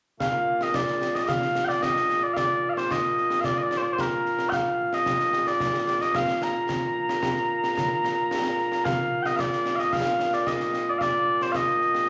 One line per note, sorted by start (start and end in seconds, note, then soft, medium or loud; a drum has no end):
0.20 12.09 A#2 medium
0.20 12.09 A#3 medium
0.20 0.63 F5 medium
0.20 concert bass drum medium
0.20 snare medium
0.61 0.75 D#5 medium
0.61 snare medium
0.74 1.15 D5 medium
0.74 concert bass drum medium
0.74 snare loud
0.88 snare medium
1.02 snare medium
1.15 1.19 D#5 medium
1.15 snare medium
1.19 1.22 D5 medium
1.19 1.28 D#5 medium
1.28 1.65 F5 medium
1.28 concert bass drum medium
1.28 snare loud
1.42 snare medium
1.55 snare medium
1.65 1.82 D5 medium
1.65 1.68 G5 medium
1.70 snare medium
1.82 2.23 D#5 medium
1.82 concert bass drum soft
1.82 snare medium
1.96 snare medium
2.10 snare medium
2.23 2.34 D5 medium
2.34 2.69 D5 loud
2.34 2.37 F5 loud
2.34 concert bass drum medium
2.34 snare medium
2.69 2.74 F5 medium
2.74 2.91 C5 medium
2.74 2.77 D5 medium
2.74 snare medium
2.91 3.41 D#5 medium
2.91 concert bass drum medium
2.91 snare medium
3.04 snare soft
3.17 snare soft
3.30 snare medium
3.41 3.45 F5 medium
3.41 concert bass drum medium
3.41 snare medium
3.45 3.58 D5 medium
3.58 3.63 D#5 medium
3.63 3.77 D5 loud
3.71 snare medium
3.77 3.82 C5 medium
3.82 3.93 D5 medium
3.93 4.00 C5 medium
3.98 4.49 A#4 medium
3.98 concert bass drum medium
3.98 snare medium
4.26 snare soft
4.39 snare medium
4.49 4.53 G5 medium
4.49 concert bass drum medium
4.49 snare medium
4.53 4.94 F5 medium
4.93 5.47 D#5 medium
4.93 snare medium
5.06 concert bass drum soft
5.06 snare medium
5.20 snare medium
5.33 snare medium
5.47 6.01 D5 medium
5.47 snare medium
5.60 concert bass drum medium
5.60 snare loud
5.74 snare medium
5.87 snare medium
6.01 6.16 D#5 loud
6.01 snare medium
6.15 6.43 F5 loud
6.15 concert bass drum medium
6.15 snare loud
6.28 snare medium
6.42 8.85 A#5 medium
6.42 snare medium
6.69 concert bass drum medium
6.69 snare loud
7.09 snare medium
7.23 concert bass drum medium
7.23 snare loud
7.36 snare soft
7.64 snare medium
7.78 concert bass drum medium
7.78 snare medium
8.04 snare medium
8.31 snare medium
8.58 snare soft
8.72 snare medium
8.85 9.23 F5 medium
8.85 concert bass drum medium
8.85 snare loud
9.23 9.36 D#5 medium
9.23 9.26 G5 medium
9.23 snare medium
9.36 9.76 D5 medium
9.36 9.40 F5 medium
9.36 concert bass drum soft
9.36 snare loud
9.52 snare medium
9.66 snare medium
9.76 9.93 D#5 medium
9.76 9.80 F5 medium
9.76 snare medium
9.93 10.34 F5 medium
9.93 concert bass drum medium
9.93 snare loud
10.06 snare medium
10.20 snare medium
10.33 10.47 D5 medium
10.33 snare medium
10.47 10.90 D#5 medium
10.47 concert bass drum soft
10.47 snare medium
10.60 snare medium
10.74 snare medium
10.90 10.98 D5 medium
10.98 11.42 D5 loud
10.98 11.02 F5 loud
10.98 concert bass drum soft
10.98 snare medium
11.41 11.52 C5 medium
11.41 snare medium
11.52 12.09 D#5 medium
11.52 11.56 F5 medium
11.52 concert bass drum soft
11.52 snare medium
11.68 snare soft
11.81 snare soft
11.95 snare medium